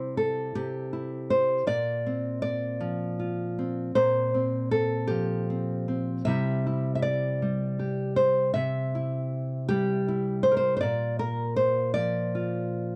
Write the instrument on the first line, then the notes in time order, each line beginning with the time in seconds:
nylon-string guitar
Already playing: C3 G3 E4 C5
0.17 A4
0.55 C3 G4
0.93 E4
1.30 C5
1.67 A#2 D5
2.06 C4
2.42 D5
2.81 F3
3.19 F4
3.59 C4
3.95 A#2 C5
4.34 C4
4.71 A4
5.07 F3 G4
5.50 C4
5.88 C4
6.25 C3 G3 E4 E5
6.29 G4
6.67 E4
6.95 E5
7.02 D5
7.42 G3
7.79 G4
8.16 C5
8.54 C3 E5
8.95 E4
9.69 G3 G4
10.08 E4
10.43 C5
10.52 A#4
10.57 C5
10.77 C5
10.81 A#2 D5
11.19 A#4
11.56 C5
11.94 F3 D5
12.35 F4